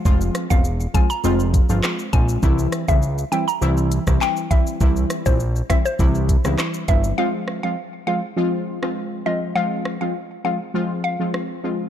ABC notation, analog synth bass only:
X:1
M:4/4
L:1/16
Q:1/4=101
K:Fm
V:1 name="Analog synth bass" clef=bass
F,,,2 z =E,,,3 z2 F,,,3 G,,, z2 B,,,2 | C,,2 z D,,3 z2 C,,3 C,, z4 | C,,2 z B,,,3 z2 C,,3 D,, z2 G,,,2 | z16 |
z16 |]